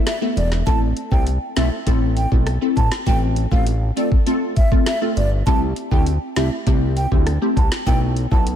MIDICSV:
0, 0, Header, 1, 5, 480
1, 0, Start_track
1, 0, Key_signature, 0, "minor"
1, 0, Tempo, 600000
1, 534, Time_signature, 4, 2, 24, 8
1, 6846, End_track
2, 0, Start_track
2, 0, Title_t, "Flute"
2, 0, Program_c, 0, 73
2, 53, Note_on_c, 0, 76, 85
2, 152, Note_off_c, 0, 76, 0
2, 293, Note_on_c, 0, 74, 85
2, 392, Note_off_c, 0, 74, 0
2, 533, Note_on_c, 0, 81, 103
2, 632, Note_off_c, 0, 81, 0
2, 894, Note_on_c, 0, 79, 83
2, 993, Note_off_c, 0, 79, 0
2, 1255, Note_on_c, 0, 76, 94
2, 1353, Note_off_c, 0, 76, 0
2, 1734, Note_on_c, 0, 79, 85
2, 1833, Note_off_c, 0, 79, 0
2, 2214, Note_on_c, 0, 81, 83
2, 2313, Note_off_c, 0, 81, 0
2, 2454, Note_on_c, 0, 79, 100
2, 2553, Note_off_c, 0, 79, 0
2, 2813, Note_on_c, 0, 77, 84
2, 2912, Note_off_c, 0, 77, 0
2, 3174, Note_on_c, 0, 74, 81
2, 3273, Note_off_c, 0, 74, 0
2, 3653, Note_on_c, 0, 76, 83
2, 3752, Note_off_c, 0, 76, 0
2, 3895, Note_on_c, 0, 76, 88
2, 3993, Note_off_c, 0, 76, 0
2, 4134, Note_on_c, 0, 74, 84
2, 4233, Note_off_c, 0, 74, 0
2, 4373, Note_on_c, 0, 81, 104
2, 4472, Note_off_c, 0, 81, 0
2, 4733, Note_on_c, 0, 79, 89
2, 4832, Note_off_c, 0, 79, 0
2, 5093, Note_on_c, 0, 76, 89
2, 5192, Note_off_c, 0, 76, 0
2, 5574, Note_on_c, 0, 79, 85
2, 5673, Note_off_c, 0, 79, 0
2, 6054, Note_on_c, 0, 81, 78
2, 6153, Note_off_c, 0, 81, 0
2, 6293, Note_on_c, 0, 79, 104
2, 6392, Note_off_c, 0, 79, 0
2, 6653, Note_on_c, 0, 81, 85
2, 6752, Note_off_c, 0, 81, 0
2, 6846, End_track
3, 0, Start_track
3, 0, Title_t, "Synth stab"
3, 0, Program_c, 1, 62
3, 0, Note_on_c, 1, 64, 70
3, 0, Note_on_c, 1, 69, 82
3, 81, Note_off_c, 1, 64, 0
3, 82, Note_off_c, 1, 69, 0
3, 170, Note_on_c, 1, 57, 81
3, 172, Note_on_c, 1, 59, 73
3, 174, Note_on_c, 1, 64, 70
3, 176, Note_on_c, 1, 69, 86
3, 319, Note_off_c, 1, 57, 0
3, 320, Note_off_c, 1, 59, 0
3, 321, Note_off_c, 1, 64, 0
3, 322, Note_off_c, 1, 69, 0
3, 532, Note_on_c, 1, 57, 96
3, 534, Note_on_c, 1, 60, 87
3, 535, Note_on_c, 1, 64, 87
3, 536, Note_on_c, 1, 69, 107
3, 864, Note_off_c, 1, 57, 0
3, 865, Note_off_c, 1, 60, 0
3, 866, Note_off_c, 1, 64, 0
3, 866, Note_off_c, 1, 69, 0
3, 891, Note_on_c, 1, 57, 84
3, 892, Note_on_c, 1, 60, 78
3, 894, Note_on_c, 1, 64, 74
3, 896, Note_on_c, 1, 69, 90
3, 1039, Note_off_c, 1, 57, 0
3, 1040, Note_off_c, 1, 60, 0
3, 1041, Note_off_c, 1, 64, 0
3, 1042, Note_off_c, 1, 69, 0
3, 1251, Note_on_c, 1, 57, 81
3, 1252, Note_on_c, 1, 60, 78
3, 1254, Note_on_c, 1, 64, 75
3, 1256, Note_on_c, 1, 69, 89
3, 1399, Note_off_c, 1, 57, 0
3, 1400, Note_off_c, 1, 60, 0
3, 1401, Note_off_c, 1, 64, 0
3, 1402, Note_off_c, 1, 69, 0
3, 1492, Note_on_c, 1, 57, 93
3, 1493, Note_on_c, 1, 60, 88
3, 1495, Note_on_c, 1, 64, 87
3, 1496, Note_on_c, 1, 69, 110
3, 1824, Note_off_c, 1, 57, 0
3, 1824, Note_off_c, 1, 60, 0
3, 1825, Note_off_c, 1, 64, 0
3, 1826, Note_off_c, 1, 69, 0
3, 1852, Note_on_c, 1, 57, 80
3, 1853, Note_on_c, 1, 60, 72
3, 1855, Note_on_c, 1, 64, 72
3, 1856, Note_on_c, 1, 69, 83
3, 2000, Note_off_c, 1, 57, 0
3, 2001, Note_off_c, 1, 60, 0
3, 2001, Note_off_c, 1, 64, 0
3, 2002, Note_off_c, 1, 69, 0
3, 2090, Note_on_c, 1, 57, 80
3, 2092, Note_on_c, 1, 60, 70
3, 2093, Note_on_c, 1, 64, 71
3, 2095, Note_on_c, 1, 69, 81
3, 2239, Note_off_c, 1, 57, 0
3, 2240, Note_off_c, 1, 60, 0
3, 2240, Note_off_c, 1, 64, 0
3, 2241, Note_off_c, 1, 69, 0
3, 2451, Note_on_c, 1, 57, 96
3, 2453, Note_on_c, 1, 60, 88
3, 2455, Note_on_c, 1, 65, 84
3, 2456, Note_on_c, 1, 69, 107
3, 2783, Note_off_c, 1, 57, 0
3, 2785, Note_off_c, 1, 60, 0
3, 2785, Note_off_c, 1, 65, 0
3, 2786, Note_off_c, 1, 69, 0
3, 2811, Note_on_c, 1, 57, 80
3, 2812, Note_on_c, 1, 60, 74
3, 2815, Note_on_c, 1, 65, 77
3, 2816, Note_on_c, 1, 69, 94
3, 2960, Note_off_c, 1, 57, 0
3, 2960, Note_off_c, 1, 60, 0
3, 2961, Note_off_c, 1, 65, 0
3, 2962, Note_off_c, 1, 69, 0
3, 3171, Note_on_c, 1, 57, 83
3, 3172, Note_on_c, 1, 60, 75
3, 3174, Note_on_c, 1, 65, 74
3, 3176, Note_on_c, 1, 69, 92
3, 3319, Note_off_c, 1, 57, 0
3, 3320, Note_off_c, 1, 60, 0
3, 3321, Note_off_c, 1, 65, 0
3, 3322, Note_off_c, 1, 69, 0
3, 3411, Note_on_c, 1, 57, 99
3, 3413, Note_on_c, 1, 60, 85
3, 3414, Note_on_c, 1, 65, 86
3, 3416, Note_on_c, 1, 69, 108
3, 3743, Note_off_c, 1, 57, 0
3, 3744, Note_off_c, 1, 60, 0
3, 3745, Note_off_c, 1, 65, 0
3, 3746, Note_off_c, 1, 69, 0
3, 3772, Note_on_c, 1, 57, 78
3, 3773, Note_on_c, 1, 60, 71
3, 3774, Note_on_c, 1, 65, 73
3, 3776, Note_on_c, 1, 69, 84
3, 3920, Note_off_c, 1, 57, 0
3, 3920, Note_off_c, 1, 60, 0
3, 3921, Note_off_c, 1, 65, 0
3, 3922, Note_off_c, 1, 69, 0
3, 4011, Note_on_c, 1, 57, 78
3, 4013, Note_on_c, 1, 60, 70
3, 4014, Note_on_c, 1, 65, 72
3, 4016, Note_on_c, 1, 69, 89
3, 4159, Note_off_c, 1, 57, 0
3, 4160, Note_off_c, 1, 60, 0
3, 4161, Note_off_c, 1, 65, 0
3, 4162, Note_off_c, 1, 69, 0
3, 4372, Note_on_c, 1, 57, 96
3, 4374, Note_on_c, 1, 60, 90
3, 4375, Note_on_c, 1, 64, 88
3, 4377, Note_on_c, 1, 67, 106
3, 4704, Note_off_c, 1, 57, 0
3, 4705, Note_off_c, 1, 60, 0
3, 4705, Note_off_c, 1, 64, 0
3, 4707, Note_off_c, 1, 67, 0
3, 4731, Note_on_c, 1, 57, 86
3, 4732, Note_on_c, 1, 60, 75
3, 4734, Note_on_c, 1, 64, 81
3, 4736, Note_on_c, 1, 67, 95
3, 4879, Note_off_c, 1, 57, 0
3, 4880, Note_off_c, 1, 60, 0
3, 4881, Note_off_c, 1, 64, 0
3, 4882, Note_off_c, 1, 67, 0
3, 5091, Note_on_c, 1, 57, 79
3, 5093, Note_on_c, 1, 60, 73
3, 5095, Note_on_c, 1, 64, 77
3, 5096, Note_on_c, 1, 67, 89
3, 5240, Note_off_c, 1, 57, 0
3, 5241, Note_off_c, 1, 60, 0
3, 5242, Note_off_c, 1, 64, 0
3, 5242, Note_off_c, 1, 67, 0
3, 5332, Note_on_c, 1, 57, 99
3, 5333, Note_on_c, 1, 60, 88
3, 5335, Note_on_c, 1, 64, 90
3, 5337, Note_on_c, 1, 67, 102
3, 5664, Note_off_c, 1, 57, 0
3, 5664, Note_off_c, 1, 60, 0
3, 5666, Note_off_c, 1, 64, 0
3, 5666, Note_off_c, 1, 67, 0
3, 5691, Note_on_c, 1, 57, 81
3, 5693, Note_on_c, 1, 60, 70
3, 5694, Note_on_c, 1, 64, 75
3, 5695, Note_on_c, 1, 67, 82
3, 5839, Note_off_c, 1, 57, 0
3, 5840, Note_off_c, 1, 60, 0
3, 5841, Note_off_c, 1, 64, 0
3, 5842, Note_off_c, 1, 67, 0
3, 5932, Note_on_c, 1, 57, 79
3, 5934, Note_on_c, 1, 60, 69
3, 5935, Note_on_c, 1, 64, 74
3, 5937, Note_on_c, 1, 67, 85
3, 6080, Note_off_c, 1, 57, 0
3, 6081, Note_off_c, 1, 60, 0
3, 6081, Note_off_c, 1, 64, 0
3, 6082, Note_off_c, 1, 67, 0
3, 6291, Note_on_c, 1, 57, 101
3, 6293, Note_on_c, 1, 59, 88
3, 6294, Note_on_c, 1, 64, 90
3, 6296, Note_on_c, 1, 69, 109
3, 6624, Note_off_c, 1, 57, 0
3, 6624, Note_off_c, 1, 59, 0
3, 6625, Note_off_c, 1, 64, 0
3, 6626, Note_off_c, 1, 69, 0
3, 6650, Note_on_c, 1, 57, 81
3, 6652, Note_on_c, 1, 59, 75
3, 6654, Note_on_c, 1, 64, 74
3, 6654, Note_on_c, 1, 69, 90
3, 6799, Note_off_c, 1, 57, 0
3, 6800, Note_off_c, 1, 59, 0
3, 6801, Note_off_c, 1, 64, 0
3, 6801, Note_off_c, 1, 69, 0
3, 6846, End_track
4, 0, Start_track
4, 0, Title_t, "Analog synth bass"
4, 0, Program_c, 2, 38
4, 294, Note_on_c, 2, 28, 105
4, 507, Note_off_c, 2, 28, 0
4, 534, Note_on_c, 2, 33, 111
4, 747, Note_off_c, 2, 33, 0
4, 893, Note_on_c, 2, 36, 92
4, 1106, Note_off_c, 2, 36, 0
4, 1255, Note_on_c, 2, 35, 101
4, 1361, Note_off_c, 2, 35, 0
4, 1494, Note_on_c, 2, 33, 114
4, 1814, Note_off_c, 2, 33, 0
4, 1854, Note_on_c, 2, 35, 88
4, 2067, Note_off_c, 2, 35, 0
4, 2214, Note_on_c, 2, 33, 105
4, 2321, Note_off_c, 2, 33, 0
4, 2453, Note_on_c, 2, 33, 113
4, 2773, Note_off_c, 2, 33, 0
4, 2812, Note_on_c, 2, 33, 94
4, 3133, Note_off_c, 2, 33, 0
4, 4133, Note_on_c, 2, 31, 100
4, 4347, Note_off_c, 2, 31, 0
4, 4373, Note_on_c, 2, 36, 111
4, 4587, Note_off_c, 2, 36, 0
4, 4732, Note_on_c, 2, 38, 92
4, 4946, Note_off_c, 2, 38, 0
4, 5094, Note_on_c, 2, 36, 90
4, 5200, Note_off_c, 2, 36, 0
4, 5333, Note_on_c, 2, 36, 109
4, 5653, Note_off_c, 2, 36, 0
4, 5695, Note_on_c, 2, 38, 95
4, 5907, Note_off_c, 2, 38, 0
4, 6054, Note_on_c, 2, 36, 96
4, 6161, Note_off_c, 2, 36, 0
4, 6293, Note_on_c, 2, 35, 107
4, 6613, Note_off_c, 2, 35, 0
4, 6653, Note_on_c, 2, 35, 103
4, 6846, Note_off_c, 2, 35, 0
4, 6846, End_track
5, 0, Start_track
5, 0, Title_t, "Drums"
5, 53, Note_on_c, 9, 37, 98
5, 53, Note_on_c, 9, 38, 114
5, 53, Note_on_c, 9, 42, 79
5, 133, Note_off_c, 9, 37, 0
5, 133, Note_off_c, 9, 38, 0
5, 133, Note_off_c, 9, 42, 0
5, 297, Note_on_c, 9, 42, 58
5, 377, Note_off_c, 9, 42, 0
5, 414, Note_on_c, 9, 38, 63
5, 494, Note_off_c, 9, 38, 0
5, 534, Note_on_c, 9, 36, 112
5, 534, Note_on_c, 9, 42, 67
5, 614, Note_off_c, 9, 36, 0
5, 614, Note_off_c, 9, 42, 0
5, 773, Note_on_c, 9, 42, 58
5, 853, Note_off_c, 9, 42, 0
5, 893, Note_on_c, 9, 36, 102
5, 973, Note_off_c, 9, 36, 0
5, 1013, Note_on_c, 9, 42, 79
5, 1093, Note_off_c, 9, 42, 0
5, 1252, Note_on_c, 9, 38, 110
5, 1256, Note_on_c, 9, 42, 54
5, 1332, Note_off_c, 9, 38, 0
5, 1336, Note_off_c, 9, 42, 0
5, 1493, Note_on_c, 9, 42, 78
5, 1494, Note_on_c, 9, 36, 96
5, 1573, Note_off_c, 9, 42, 0
5, 1574, Note_off_c, 9, 36, 0
5, 1733, Note_on_c, 9, 42, 50
5, 1813, Note_off_c, 9, 42, 0
5, 1855, Note_on_c, 9, 36, 97
5, 1935, Note_off_c, 9, 36, 0
5, 1973, Note_on_c, 9, 37, 98
5, 1973, Note_on_c, 9, 42, 77
5, 2053, Note_off_c, 9, 37, 0
5, 2053, Note_off_c, 9, 42, 0
5, 2214, Note_on_c, 9, 36, 99
5, 2216, Note_on_c, 9, 42, 58
5, 2294, Note_off_c, 9, 36, 0
5, 2296, Note_off_c, 9, 42, 0
5, 2333, Note_on_c, 9, 38, 111
5, 2413, Note_off_c, 9, 38, 0
5, 2453, Note_on_c, 9, 36, 110
5, 2453, Note_on_c, 9, 42, 66
5, 2533, Note_off_c, 9, 36, 0
5, 2533, Note_off_c, 9, 42, 0
5, 2691, Note_on_c, 9, 42, 61
5, 2771, Note_off_c, 9, 42, 0
5, 2812, Note_on_c, 9, 36, 102
5, 2892, Note_off_c, 9, 36, 0
5, 2932, Note_on_c, 9, 42, 78
5, 3012, Note_off_c, 9, 42, 0
5, 3176, Note_on_c, 9, 42, 56
5, 3256, Note_off_c, 9, 42, 0
5, 3293, Note_on_c, 9, 36, 100
5, 3373, Note_off_c, 9, 36, 0
5, 3412, Note_on_c, 9, 42, 76
5, 3492, Note_off_c, 9, 42, 0
5, 3652, Note_on_c, 9, 42, 52
5, 3654, Note_on_c, 9, 36, 101
5, 3732, Note_off_c, 9, 42, 0
5, 3734, Note_off_c, 9, 36, 0
5, 3774, Note_on_c, 9, 36, 91
5, 3854, Note_off_c, 9, 36, 0
5, 3891, Note_on_c, 9, 37, 99
5, 3891, Note_on_c, 9, 38, 117
5, 3891, Note_on_c, 9, 42, 81
5, 3971, Note_off_c, 9, 37, 0
5, 3971, Note_off_c, 9, 38, 0
5, 3971, Note_off_c, 9, 42, 0
5, 4136, Note_on_c, 9, 42, 57
5, 4216, Note_off_c, 9, 42, 0
5, 4373, Note_on_c, 9, 36, 112
5, 4373, Note_on_c, 9, 42, 68
5, 4453, Note_off_c, 9, 36, 0
5, 4453, Note_off_c, 9, 42, 0
5, 4611, Note_on_c, 9, 42, 59
5, 4691, Note_off_c, 9, 42, 0
5, 4732, Note_on_c, 9, 36, 104
5, 4812, Note_off_c, 9, 36, 0
5, 4852, Note_on_c, 9, 42, 80
5, 4932, Note_off_c, 9, 42, 0
5, 5091, Note_on_c, 9, 38, 108
5, 5095, Note_on_c, 9, 42, 52
5, 5171, Note_off_c, 9, 38, 0
5, 5175, Note_off_c, 9, 42, 0
5, 5333, Note_on_c, 9, 36, 98
5, 5333, Note_on_c, 9, 42, 76
5, 5413, Note_off_c, 9, 36, 0
5, 5413, Note_off_c, 9, 42, 0
5, 5573, Note_on_c, 9, 42, 50
5, 5653, Note_off_c, 9, 42, 0
5, 5694, Note_on_c, 9, 36, 97
5, 5774, Note_off_c, 9, 36, 0
5, 5813, Note_on_c, 9, 37, 94
5, 5813, Note_on_c, 9, 42, 82
5, 5893, Note_off_c, 9, 37, 0
5, 5893, Note_off_c, 9, 42, 0
5, 6054, Note_on_c, 9, 36, 101
5, 6056, Note_on_c, 9, 42, 59
5, 6134, Note_off_c, 9, 36, 0
5, 6136, Note_off_c, 9, 42, 0
5, 6174, Note_on_c, 9, 38, 111
5, 6254, Note_off_c, 9, 38, 0
5, 6293, Note_on_c, 9, 36, 111
5, 6294, Note_on_c, 9, 42, 68
5, 6373, Note_off_c, 9, 36, 0
5, 6374, Note_off_c, 9, 42, 0
5, 6532, Note_on_c, 9, 42, 57
5, 6612, Note_off_c, 9, 42, 0
5, 6653, Note_on_c, 9, 36, 104
5, 6733, Note_off_c, 9, 36, 0
5, 6773, Note_on_c, 9, 42, 84
5, 6846, Note_off_c, 9, 42, 0
5, 6846, End_track
0, 0, End_of_file